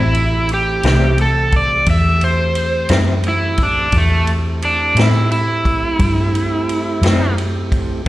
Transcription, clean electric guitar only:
0.85 1.06 A2 soft
0.85 1.06 G3 medium
0.85 1.05 C4 medium
0.85 1.05 E4 medium
2.90 3.11 A2 medium
2.90 3.11 G3 medium
2.90 3.11 C4 medium
2.90 3.11 E4 medium
4.97 5.18 A2 soft
4.97 5.18 G3 medium
4.97 5.18 C4 medium
4.97 5.18 E4 medium
7.04 7.25 A2 medium
7.04 7.25 G3 medium
7.04 7.24 C4 medium
7.04 7.24 E4 medium

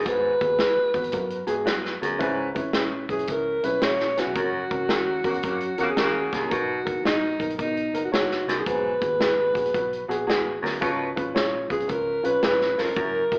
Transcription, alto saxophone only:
0.08 1.68 B4 loud
3.11 3.33 G#4 medium
3.31 3.67 A#4 medium
3.65 3.85 B4 medium
3.84 4.21 C#5 loud
4.20 5.80 F#4 loud
5.80 5.84 F#4 medium
5.89 5.97 G#4 medium
5.99 6.48 G#4 medium
6.51 7.01 F#4 medium
7.06 7.55 D#4 medium
7.61 8.01 D#4 medium
8.05 8.12 F#4 medium
8.14 8.54 F#4 medium
8.59 8.68 G#4 medium
8.67 10.28 B4 medium
11.72 11.93 G#4 medium
11.91 12.28 A#4 medium
12.26 12.44 B4 loud
12.46 12.83 B4 loud
12.81 13.39 A#4 medium

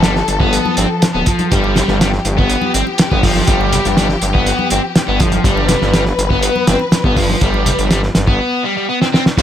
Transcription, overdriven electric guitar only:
0.04 0.14 G3 medium
0.41 0.76 B3 loud
0.78 0.88 C4 medium
1.15 1.26 B3 medium
1.27 1.50 F3 medium
1.51 1.99 G3 medium
2.01 2.11 G3 medium
2.38 2.73 B3 loud
2.75 2.84 C4 medium
3.11 3.23 B3 medium
3.24 3.47 F3 medium
3.48 3.96 G3 loud
3.97 4.07 G3 medium
4.34 4.70 B3 loud
4.71 4.81 C4 medium
5.08 5.20 B3 medium
5.20 5.44 F3 medium
5.45 5.93 G3 loud
5.94 6.04 G3 medium
6.31 6.67 B3 loud
6.68 6.78 C4 medium
7.05 7.16 B3 medium
7.17 7.40 F3 medium
7.41 7.89 G3 loud
7.91 8.01 G3 medium
8.28 8.63 B3 loud
8.64 8.74 G3 loud
8.77 8.87 G3 medium
8.89 8.99 B3 medium
9.01 9.07 C4 medium
9.13 9.23 C4 loud
9.38 9.42 G3 medium

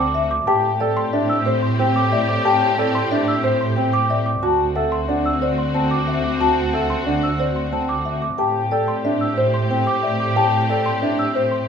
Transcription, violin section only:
0.00 0.26 C4 medium
0.00 0.26 F#4 medium
0.48 4.23 C4 medium
0.48 4.23 G4 medium
4.43 8.18 C4 medium
4.43 8.18 F#4 medium
8.39 11.68 C4 medium
8.39 11.68 G4 medium

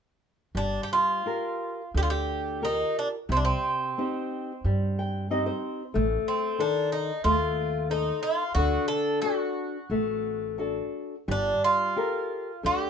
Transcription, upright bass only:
0.55 0.77 G1 medium
1.94 2.82 D2 medium
3.29 3.51 C2 medium
4.64 5.49 G2 medium
5.95 6.16 A1 medium
7.25 8.10 D#2 medium
8.55 8.77 D2 medium
9.90 10.80 A1 medium
11.28 11.51 G1 medium
12.64 12.90 D2 medium

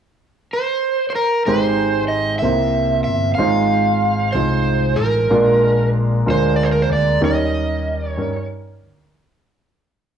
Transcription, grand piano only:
1.46 2.39 G#2 medium
1.46 2.28 G#3 medium
1.46 2.29 D#4 medium
1.46 2.29 G4 medium
1.46 2.29 C5 medium
2.42 3.35 C3 medium
2.42 3.24 A#3 medium
2.42 3.24 E4 soft
2.42 3.25 G4 soft
2.42 3.25 C5 medium
3.38 4.31 G#2 medium
3.38 4.20 G#3 medium
3.38 4.20 D#4 medium
3.38 4.21 F4 medium
3.38 4.21 C5 medium
4.34 5.16 G#3 medium
4.34 5.17 D#4 soft
4.34 5.16 F4 medium
4.34 5.17 C5 medium
5.30 6.22 A#2 medium
5.30 6.12 G#3 medium
5.30 6.12 D4 medium
5.30 6.12 F4 medium
5.30 6.12 A#4 medium
6.26 7.08 G#3 medium
6.26 7.08 D4 medium
6.26 7.08 F4 medium
6.26 7.08 A#4 medium
7.21 8.13 D#3 medium
7.21 8.03 G3 medium
7.21 8.03 C#4 medium
7.21 8.03 D#4 medium
7.21 8.03 A#4 medium
8.17 8.99 G3 medium
8.17 8.99 C#4 medium
8.17 8.99 D#4 medium
8.17 9.00 A#4 medium

